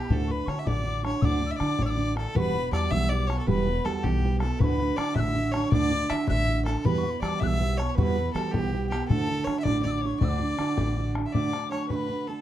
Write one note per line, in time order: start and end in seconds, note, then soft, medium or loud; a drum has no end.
0.00 0.11 B3 soft
0.00 0.10 E4 medium
0.00 0.14 G4 medium
0.04 0.27 A5 medium
0.04 0.09 B5 medium
0.09 0.28 D2 medium
0.09 0.41 D2 loud
0.09 0.29 A2 medium
0.09 0.29 D3 medium
0.09 0.29 D4 medium
0.09 0.29 E4 medium
0.09 0.27 F#4 medium
0.09 0.33 A4 medium
0.09 bodhran medium
0.27 0.47 D4 soft
0.27 0.48 E4 soft
0.27 0.47 F#4 soft
0.27 0.32 C#6 medium
0.27 bodhran soft
0.31 0.46 D3 soft
0.31 0.50 B4 medium
0.31 0.47 B5 medium
0.46 0.66 D3 medium
0.46 0.63 D3 medium
0.46 0.65 D4 medium
0.46 0.65 E4 medium
0.46 0.64 F#4 medium
0.46 0.61 C#5 medium
0.46 0.66 C#6 medium
0.46 bodhran medium
0.59 0.68 E5 medium
0.65 1.12 A1 medium
0.65 0.86 D2 medium
0.65 0.86 A2 medium
0.65 0.83 D3 medium
0.65 0.84 D4 medium
0.65 0.85 E4 medium
0.65 0.85 F#4 medium
0.65 1.04 D5 loud
0.65 0.84 D6 medium
0.65 bodhran medium
0.84 1.03 D3 medium
0.84 1.04 D4 medium
0.84 1.04 E4 medium
0.84 1.02 F#4 medium
0.84 1.05 D6 medium
0.84 bodhran soft
1.03 1.22 D3 soft
1.03 1.23 D4 soft
1.03 1.23 E4 medium
1.03 1.22 F#4 medium
1.03 1.27 C#5 medium
1.03 1.23 C#6 medium
1.03 bodhran medium
1.22 1.53 D2 loud
1.22 1.41 D2 medium
1.22 1.41 A2 medium
1.22 1.42 D3 medium
1.22 1.41 D4 medium
1.22 1.40 E4 medium
1.22 1.39 F#4 medium
1.22 1.53 D5 loud
1.22 1.46 D6 medium
1.22 1.26 E6 medium
1.22 bodhran medium
1.40 1.58 D3 soft
1.40 1.60 E4 medium
1.40 1.59 F#4 soft
1.40 bodhran soft
1.46 1.55 E6 medium
1.51 1.58 E5 medium
1.51 1.60 E6 medium
1.56 1.78 D3 medium
1.56 1.84 D5 medium
1.56 1.85 D6 medium
1.56 bodhran medium
1.61 1.76 D3 medium
1.61 1.79 D4 medium
1.61 1.78 E4 medium
1.61 1.78 F#4 medium
1.79 2.25 A1 medium
1.79 1.99 D2 medium
1.79 1.98 A2 medium
1.79 1.96 D3 medium
1.79 1.96 D4 medium
1.79 1.97 E4 medium
1.79 1.98 F#4 medium
1.79 1.88 C#5 medium
1.79 bodhran medium
1.85 2.17 D5 loud
1.85 1.91 E6 medium
1.90 2.14 D6 medium
1.97 2.16 D3 medium
1.97 2.16 D4 medium
1.97 2.15 E4 soft
1.97 2.14 F#4 medium
1.97 bodhran soft
2.15 2.35 D3 soft
2.15 2.35 D4 soft
2.15 2.35 E4 medium
2.15 2.34 F#4 medium
2.15 2.37 A4 medium
2.15 2.34 A5 medium
2.15 bodhran medium
2.35 2.66 E1 loud
2.35 2.54 E3 medium
2.35 2.54 G3 medium
2.35 2.54 B3 medium
2.35 2.54 E4 medium
2.35 2.52 F#4 medium
2.35 2.72 B4 loud
2.35 2.41 C#6 medium
2.35 bodhran medium
2.40 2.74 B5 loud
2.54 2.72 B3 soft
2.54 2.73 E4 medium
2.54 2.72 F#4 medium
2.54 bodhran soft
2.72 2.88 E2 medium
2.72 2.91 G3 medium
2.72 2.92 B3 medium
2.72 2.91 E4 medium
2.72 2.90 F#4 medium
2.72 2.92 D5 loud
2.72 2.78 E6 medium
2.72 bodhran medium
2.77 2.94 D6 medium
2.91 3.37 B1 loud
2.91 3.11 E3 medium
2.91 3.09 G3 medium
2.91 3.10 B3 medium
2.91 3.10 E4 medium
2.91 3.10 F#4 medium
2.91 3.11 E5 loud
2.91 3.13 E6 medium
2.91 bodhran medium
3.09 3.29 G3 medium
3.09 3.30 B3 medium
3.09 3.28 E4 medium
3.09 3.28 D5 loud
3.09 3.31 D6 medium
3.09 bodhran soft
3.13 3.27 F#4 medium
3.27 3.47 E4 soft
3.27 3.47 F#4 medium
3.27 3.38 C#5 medium
3.27 3.48 C#6 medium
3.27 bodhran medium
3.31 3.47 B3 soft
3.39 3.48 A4 medium
3.47 3.78 E1 loud
3.47 3.66 E3 medium
3.47 3.66 G3 medium
3.47 3.66 B3 medium
3.47 3.66 E4 loud
3.47 3.64 F#4 medium
3.47 3.86 B4 loud
3.47 3.88 B5 medium
3.47 bodhran medium
3.65 3.85 B3 soft
3.65 3.85 E4 soft
3.65 3.85 F#4 medium
3.65 bodhran soft
3.85 4.01 E2 medium
3.85 4.04 G3 medium
3.85 4.03 B3 medium
3.85 4.03 E4 medium
3.85 4.03 F#4 medium
3.85 4.05 A4 loud
3.85 3.99 A5 medium
3.85 bodhran medium
3.99 4.05 A5 medium
4.04 4.50 B1 medium
4.04 4.24 E3 medium
4.04 4.22 G3 medium
4.04 4.23 B3 medium
4.04 4.23 E4 medium
4.04 4.23 F#4 medium
4.04 4.40 G4 medium
4.04 4.09 A5 medium
4.04 bodhran medium
4.08 4.41 G5 medium
4.22 4.42 G3 medium
4.22 4.42 B3 medium
4.22 4.42 E4 medium
4.22 4.41 F#4 medium
4.22 bodhran soft
4.40 4.61 E4 medium
4.40 4.60 F#4 medium
4.40 4.61 A4 medium
4.40 4.62 A5 medium
4.40 bodhran medium
4.45 4.62 B3 medium
4.59 4.79 D2 medium
4.59 4.91 D2 loud
4.59 4.79 A2 medium
4.59 4.80 D3 medium
4.59 4.79 D4 medium
4.59 4.79 E4 medium
4.59 4.78 F#4 loud
4.59 4.98 B4 loud
4.59 4.65 C#6 medium
4.59 bodhran medium
4.64 5.01 B5 medium
4.79 4.96 D3 soft
4.79 4.97 D4 soft
4.79 4.98 E4 medium
4.79 4.97 F#4 medium
4.79 bodhran soft
4.97 5.16 D3 medium
4.97 5.13 D3 medium
4.97 5.16 D4 medium
4.97 5.15 F#4 medium
4.97 5.10 D5 loud
4.97 5.16 D6 medium
4.97 bodhran medium
5.10 5.16 D5 medium
5.15 5.62 A1 loud
5.15 5.36 D2 medium
5.15 5.36 A2 medium
5.15 5.33 D3 medium
5.15 5.34 D4 medium
5.15 5.35 E4 medium
5.15 5.35 F#4 medium
5.15 5.53 E5 loud
5.15 5.21 F#6 medium
5.15 bodhran medium
5.20 5.51 E6 medium
5.34 5.53 D3 medium
5.34 5.54 D4 medium
5.34 5.53 E4 medium
5.34 5.52 F#4 medium
5.34 bodhran soft
5.52 5.73 D4 medium
5.52 5.72 E4 soft
5.52 5.72 F#4 medium
5.52 5.71 C#5 loud
5.52 5.75 C#6 medium
5.52 bodhran medium
5.56 5.72 D3 medium
5.72 5.91 D2 medium
5.72 6.03 D2 loud
5.72 5.91 A2 medium
5.72 5.92 D3 medium
5.72 5.92 D4 medium
5.72 5.91 E4 medium
5.72 5.90 F#4 loud
5.72 6.11 D5 loud
5.72 6.12 D6 loud
5.72 bodhran loud
5.91 6.09 D4 medium
5.91 6.10 E4 soft
5.91 6.10 F#4 medium
5.91 bodhran soft
6.09 6.28 D3 medium
6.09 6.26 D3 medium
6.09 6.28 D4 medium
6.09 6.27 E4 medium
6.09 6.27 F#4 medium
6.09 6.28 E5 loud
6.09 6.28 E6 medium
6.09 bodhran medium
6.28 6.75 A1 medium
6.28 6.48 D2 medium
6.28 6.48 A2 medium
6.28 6.46 D3 medium
6.28 6.47 D4 medium
6.28 6.47 E4 medium
6.28 6.47 F#4 medium
6.28 6.63 E5 loud
6.28 6.59 E6 medium
6.28 6.32 F#6 medium
6.28 bodhran medium
6.47 6.66 D3 medium
6.47 6.66 D4 medium
6.47 6.66 E4 medium
6.47 6.65 F#4 medium
6.47 bodhran soft
6.65 6.85 D3 soft
6.65 6.86 D4 soft
6.65 6.85 E4 soft
6.65 6.85 F#4 medium
6.65 6.87 A4 medium
6.65 bodhran medium
6.85 7.15 E2 loud
6.85 7.04 E3 medium
6.85 7.04 G3 medium
6.85 7.04 B3 medium
6.85 7.04 E4 medium
6.85 7.02 F#4 loud
6.85 7.21 B4 loud
6.85 7.00 B5 medium
6.85 bodhran medium
6.98 7.12 C#6 medium
7.04 7.21 B3 soft
7.04 7.22 E4 soft
7.04 7.22 F#4 medium
7.04 bodhran soft
7.10 7.23 B5 medium
7.21 7.37 E3 medium
7.21 7.40 G3 medium
7.21 7.41 B3 medium
7.21 7.40 E4 medium
7.21 7.40 F#4 medium
7.21 7.41 D5 medium
7.21 7.29 E6 medium
7.21 bodhran medium
7.28 7.45 D6 medium
7.40 7.87 B1 medium
7.40 7.61 E3 medium
7.40 7.58 G3 medium
7.40 7.59 B3 medium
7.40 7.60 E4 medium
7.40 7.60 F#4 medium
7.40 7.79 E5 loud
7.40 7.48 F#6 medium
7.40 bodhran loud
7.47 7.80 E6 medium
7.59 7.78 G3 medium
7.59 7.79 B3 medium
7.59 7.78 E4 medium
7.59 7.77 F#4 medium
7.59 bodhran soft
7.77 7.96 B3 soft
7.77 7.97 E4 medium
7.77 7.97 F#4 medium
7.77 7.89 C#5 loud
7.77 7.97 C#6 medium
7.77 bodhran medium
7.89 7.97 C#5 medium
7.95 8.28 E2 loud
7.95 8.15 E3 medium
7.95 8.16 G3 medium
7.95 8.16 B3 loud
7.95 8.16 E4 loud
7.95 8.14 F#4 medium
7.95 8.33 B4 loud
7.95 8.04 C#6 medium
7.95 bodhran medium
8.03 8.37 B5 medium
8.15 8.34 B3 medium
8.15 8.35 E4 medium
8.15 8.34 F#4 medium
8.15 bodhran soft
8.33 8.50 E3 medium
8.33 8.53 G3 medium
8.33 8.54 B3 medium
8.33 8.53 E4 medium
8.33 8.52 F#4 medium
8.33 8.53 A4 medium
8.33 8.55 A5 medium
8.33 bodhran medium
8.52 8.99 B1 medium
8.52 8.73 E3 medium
8.52 8.71 G3 medium
8.52 8.72 B3 medium
8.52 8.72 E4 medium
8.52 8.72 F#4 medium
8.52 8.89 G4 loud
8.52 8.61 A5 medium
8.52 bodhran medium
8.60 9.12 G5 medium
8.72 8.91 G3 medium
8.72 8.91 B3 medium
8.72 8.92 E4 medium
8.72 8.90 F#4 medium
8.72 bodhran soft
8.90 9.10 E4 medium
8.90 9.10 F#4 medium
8.90 9.07 G4 medium
8.90 bodhran medium
8.94 9.10 B3 medium
9.08 9.28 D2 medium
9.08 9.40 D2 loud
9.08 9.28 A2 medium
9.08 9.29 D3 medium
9.08 9.28 D4 medium
9.08 9.27 E4 medium
9.08 9.26 F#4 medium
9.08 9.46 A4 loud
9.08 9.48 A5 medium
9.08 bodhran medium
9.27 9.45 D3 soft
9.27 9.46 D4 soft
9.27 9.47 E4 medium
9.27 9.47 F#4 medium
9.45 9.65 D3 medium
9.45 9.64 D4 medium
9.45 9.64 E4 medium
9.45 9.59 C#5 loud
9.45 bodhran medium
9.49 9.64 F#4 medium
9.59 9.82 D5 loud
9.59 9.65 E5 medium
9.65 10.11 A1 medium
9.65 9.85 D2 medium
9.65 9.85 A2 medium
9.65 9.82 D3 medium
9.65 9.84 D4 medium
9.65 9.84 E4 medium
9.65 9.84 F#4 medium
9.65 9.84 D6 medium
9.65 bodhran medium
9.83 10.03 D3 medium
9.83 10.03 D4 medium
9.83 10.03 E4 medium
9.83 10.02 F#4 medium
9.83 9.97 D5 medium
9.83 bodhran soft
9.87 9.92 E6 medium
9.91 10.07 D6 medium
9.97 10.03 D5 medium
10.02 10.20 D3 soft
10.02 10.21 D4 medium
10.02 10.21 E4 medium
10.02 10.21 F#4 medium
10.02 10.19 C#5 medium
10.06 10.26 C#6 medium
10.20 10.40 D2 medium
10.20 10.52 D2 loud
10.20 10.40 A2 medium
10.20 10.40 D3 medium
10.20 10.40 D4 medium
10.20 10.39 E4 medium
10.20 10.38 F#4 medium
10.20 11.10 D5 loud
10.20 bodhran medium
10.24 10.29 E6 medium
10.28 11.04 D6 medium
10.39 10.56 D3 soft
10.39 10.58 D4 soft
10.39 10.59 E4 soft
10.39 10.59 F#4 medium
10.39 bodhran soft
10.57 10.77 D3 medium
10.57 10.75 D3 medium
10.57 10.77 D4 medium
10.57 10.77 E4 medium
10.57 10.76 F#4 medium
10.57 bodhran medium
10.77 11.24 A1 medium
10.77 10.98 D2 medium
10.77 10.97 A2 medium
10.77 10.95 D3 medium
10.77 10.96 D4 medium
10.77 10.97 E4 medium
10.77 10.96 F#4 medium
10.77 bodhran medium
10.96 11.15 D3 medium
10.96 11.16 D4 medium
10.96 11.15 E4 medium
10.96 11.14 F#4 medium
10.96 bodhran soft
11.15 11.34 D3 medium
11.15 11.34 D4 medium
11.15 11.35 E4 medium
11.15 11.34 F#4 medium
11.15 bodhran medium
11.26 11.34 E5 medium
11.33 11.53 D2 medium
11.33 11.53 A2 medium
11.33 11.53 D3 medium
11.33 11.52 A3 medium
11.33 11.53 D4 medium
11.33 11.51 F#4 medium
11.33 11.70 D5 loud
11.33 11.69 D6 medium
11.33 bodhran medium
11.44 bodhran soft
11.52 11.70 D3 soft
11.52 11.72 A3 soft
11.52 11.71 D4 soft
11.52 11.71 F#4 medium
11.52 bodhran medium
11.71 11.90 D3 soft
11.71 11.89 A3 medium
11.71 11.90 D4 medium
11.71 11.89 F#4 medium
11.71 11.89 C#5 medium
11.71 11.90 C#6 medium
11.71 bodhran medium
11.89 12.10 D2 medium
11.89 12.10 A2 medium
11.89 12.07 D3 medium
11.89 12.09 A3 medium
11.89 12.09 D4 medium
11.89 12.09 F#4 medium
11.89 12.29 B4 medium
11.89 11.96 C#6 medium
11.89 bodhran medium
11.95 12.30 B5 medium
12.09 12.28 D3 medium
12.09 12.28 A3 soft
12.09 12.28 D4 medium
12.09 12.26 F#4 medium
12.09 bodhran soft
12.27 12.41 D3 soft
12.27 12.41 A3 soft
12.27 12.41 D4 soft
12.27 12.41 F#4 medium
12.27 12.41 A4 medium
12.27 12.41 A5 medium